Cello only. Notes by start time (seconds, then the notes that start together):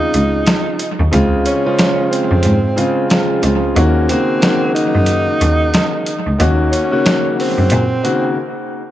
0.14 C#2
0.99 D#2
1.13 C#2
2.31 F2
2.45 G#2
3.44 C#2
3.77 D#2
4.95 F#2
5.41 D#2
6.26 C#2
6.40 D#2
7.58 F#2
7.72 A#2